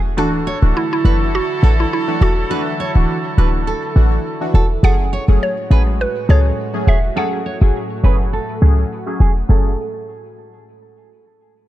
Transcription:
Already playing: 808-style bass E1, analog synth pad A2 A3 F#4
0.17 808-style bass D1, analog synth pad D3 F#3 E4, synth keys E3 A3 D4 F#4, synth pluck D4, horn section E4 F#4 A4, nylon-string guitar A4
0.47 nylon-string guitar C#5
0.62 808-style bass D1, synth keys E3 A3 D4 F#4
0.77 synth pluck E4
0.93 synth pluck E4
1.04 808-style bass F#1, synth keys E3 A3 D4 F#4, nylon-string guitar B4
1.35 synth pluck F#4
1.63 808-style bass A1, synth keys E3 A3 D4 F#4, nylon-string guitar A4
1.80 synth pluck E4
1.93 synth pluck E4
2.08 synth keys E3 A3 D4 F#4
2.21 808-style bass E1, synth pluck F#4, nylon-string guitar A4
2.50 synth keys E3 A3 D4 F#4, nylon-string guitar B4
2.80 nylon-string guitar C#5
2.95 808-style bass D1, synth keys E3 A3 D4 F#4
3.37 808-style bass D1, synth keys E3 A3 D4 F#4, nylon-string guitar B4
3.67 nylon-string guitar A4
3.96 808-style bass A1, synth keys E3 A3 D4 F#4
4.41 synth keys E3 A3 D4 F#4
4.54 808-style bass E1, nylon-string guitar A4
4.83 808-style bass F#1, analog synth pad A2 G#3 F#4, synth keys F#3 A3 C#4 G#4, nylon-string guitar A4, synth pluck F#5
5.13 nylon-string guitar C#5
5.28 808-style bass F#1, synth keys F#3 A3 C#4 G#4
5.43 synth pluck C#5
5.70 808-style bass A1, synth keys F#3 A3 C#4 G#4, nylon-string guitar B4
6.01 synth pluck B4
6.29 808-style bass C#2, synth keys F#3 A3 C#4 G#4, nylon-string guitar A4, synth pluck C#5
6.74 synth keys F#3 A3 C#4 G#4
6.87 808-style bass E1, nylon-string guitar G#4, synth pluck E5
7.16 synth keys F#3 A3 C#4 G#4, analog synth pad A3, nylon-string guitar A4, synth pluck F#5
7.46 nylon-string guitar C#5
7.61 808-style bass F#1, synth keys F#3 A3 C#4 G#4
8.03 808-style bass F#1, synth keys F#3 A3 C#4 G#4, nylon-string guitar B4
8.33 nylon-string guitar A4
8.61 808-style bass C#2, synth keys F#3 A3 C#4 G#4
9.07 synth keys F#3 A3 C#4 G#4
9.20 808-style bass E1, nylon-string guitar G#4
9.49 808-style bass F#1, synth keys F#3 A3 C#4 G#4, nylon-string guitar A4

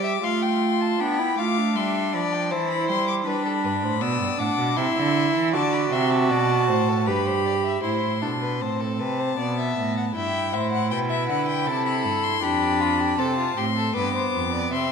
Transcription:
Already playing: cello G3, viola G4, violin D6
0.04 violin E5
0.23 cello A3, viola F4, violin F5 C6
0.42 violin G5
0.81 violin A5
1.00 cello B3, viola D4, violin G5 B5
1.19 viola E4
1.38 cello A3, viola F4, violin F5 D6
1.58 viola D4
1.76 cello G3, violin E5 C6
2.14 cello F3, violin D5 B5
2.33 violin G5
2.51 cello E3, viola E4, violin C5 A5
2.70 violin B5
2.89 cello G3, violin C6
3.07 violin D6
3.26 cello G3, viola D4, violin B4 B5
3.45 violin A4
3.64 cello G2, violin B4
3.83 cello A2, violin C5
4.01 cello B2, viola B3, violin D5 E6
4.20 cello G2
4.39 cello A2, viola D4, violin F#5 D6
4.58 cello B2
4.77 cello C3, viola E4, violin E5 C6
4.96 cello D3
5.35 cello E3
5.53 cello D3, viola F#4, violin D5 A5
5.73 violin B5
5.92 cello C3, violin E5 C6
6.11 violin A5
6.30 cello B2, violin D5
6.69 cello A2, violin C5
6.89 violin A4
7.07 cello G2, viola G4, violin B4 B5
7.26 violin C5
7.45 violin D5
7.64 violin E5
7.83 cello A2, viola E4, violin C5 C6
8.22 cello B2, viola D4, violin A4
8.42 violin B4
8.61 cello A2, viola C4, violin C5 A5
8.81 violin A4
8.99 cello C3, violin B4
9.20 violin C5
9.38 cello B2, viola B3, violin D5
9.59 violin E5
9.77 cello A2
9.97 violin F#5
10.15 cello G2, viola E4, violin E5 G5
10.53 cello A2, violin C5 E5
10.72 violin F#5
10.91 cello B2, violin B4 G5
11.10 violin E5
11.29 cello D3, violin F#5
11.48 violin G5
11.67 cello C3, violin A4 A5
11.86 violin B5
12.05 cello G2
12.23 violin C6
12.42 cello F2, viola D4, violin G4 B5
12.80 violin F4
13.00 violin G4
13.18 cello C3, viola C4, violin A4 A5
13.38 violin F4
13.57 cello A2, violin G4 C6
13.76 violin A4
13.95 cello G2, viola B3, violin B4 D6
14.14 violin C5
14.34 cello F2
14.53 violin D5
14.73 cello C3, viola C4, violin E5 C6

